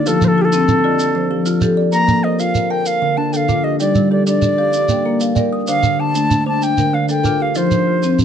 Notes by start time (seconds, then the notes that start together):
Already playing: A#3 D#4
0.06 F3 F4 G4 A4, shekere
0.21 F3 C5, shekere
0.28 A4
0.38 F4 G4
0.45 A4
0.53 C4 F4, shekere
0.68 F4, shekere
0.84 F4 D5 D#5
0.99 F4, shekere
1.15 F3 C5
1.31 F3 G4
1.46 F4, shekere
1.61 G4 A4, shekere
1.77 D5
1.92 A#3 A#4 A#5, shekere
2.08 A#3, shekere
2.24 A#4 C5 D#5
2.39 F4 A#4 F5, shekere
2.55 A#4, shekere
2.70 A#4 G5 A5
2.86 A#4 F5, shekere
3.02 D3 A#4
3.17 D3 D4 A5
3.33 D4 A4 F5 G5, shekere
3.49 D4 F4, shekere
3.64 G4 D#5
3.80 G3 D#4 G4 D5, shekere
3.95 G3, shekere
4.11 G4 A4 D5
4.27 D4 G4 D5, shekere
4.42 G4, shekere
4.58 G4 F5
4.73 G4, shekere
4.89 A#3 G5, shekere
5.05 A#3 A#4
5.20 A#4 F5, shekere
5.36 A#4 D5 G5, shekere
5.53 D#6
5.67 D3 D4 C5 F5, shekere
5.83 D3, shekere
5.99 D4 A5
6.15 A3 D4, shekere
6.31 D4, shekere
6.46 D4 C5 A5
6.62 D4 G5, shekere
6.77 D3 A#4, shekere
6.93 D3 D4 F5
7.08 D4 A4 G5, shekere
7.24 D4 F4 A#4, shekere
7.40 G4 F5
7.55 F3 D#4 F4 C5, shekere
7.71 F3, shekere
7.87 F4
8.03 C4 F4, shekere
8.19 F4, shekere